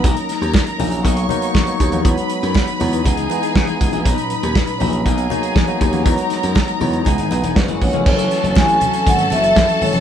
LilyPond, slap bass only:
\new Staff \with { instrumentName = "Slap bass" } { \clef bass \time 4/4 \key b \major \tempo 4 = 120 b,,16 r8 dis,16 r8 ais,,8 b,,8 r4 dis,8 | e,16 r8 fis,16 r8 e,8 cis,8 r8 cis16 r16 cis,16 ais,,16 | b,,16 r8 dis,16 r8 ais,,8 b,,8 r4 dis,8 | e,16 r8 fis,16 r8 e,8 cis,16 gis,,16 b,,16 e,,16 fis,,16 fis,,16 ais,,16 eis,,16 |
fis,,8 r16 fis,,16 a,,8 r8 gis,,8 fis,,8 fis,16 r16 gis,,16 eis,,16 | }